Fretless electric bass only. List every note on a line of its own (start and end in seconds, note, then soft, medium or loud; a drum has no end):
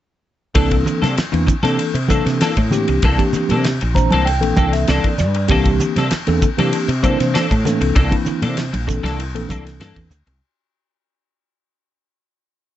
0.55 0.84 C2 medium
1.03 1.16 C3 medium
1.17 muted fretless electric bass stroke soft
1.33 1.46 E2 medium
1.64 1.77 C3 medium
1.94 2.23 C3 medium
2.26 2.39 C3 medium
2.58 2.85 A2 medium
2.88 3.01 C2 medium
3.03 3.17 C2 medium
3.35 muted fretless electric bass stroke soft
3.51 3.78 C3 medium
3.82 4.10 A#1 medium
4.13 4.43 C2 medium
4.43 4.56 A#1 medium
4.57 4.85 C2 medium
4.89 5.03 C2 loud
5.20 5.47 G2 medium
5.50 5.78 C2 loud
5.97 6.10 C3 medium
6.12 muted fretless electric bass stroke soft
6.28 6.41 E2 medium
6.58 6.72 C3 medium
6.88 7.17 C3 medium
7.20 7.33 C3 medium
7.51 7.79 A2 medium
7.81 7.94 C2 medium
7.96 8.10 C2 medium
8.27 muted fretless electric bass stroke soft
8.43 8.71 C3 medium
8.73 9.02 A#1 medium
9.03 9.35 C2 medium
9.35 9.48 A#1 medium
9.50 9.78 C2 medium
9.80 9.94 G2 medium
9.97 10.10 E2 medium
10.10 10.25 D2 medium
10.26 10.40 C2 medium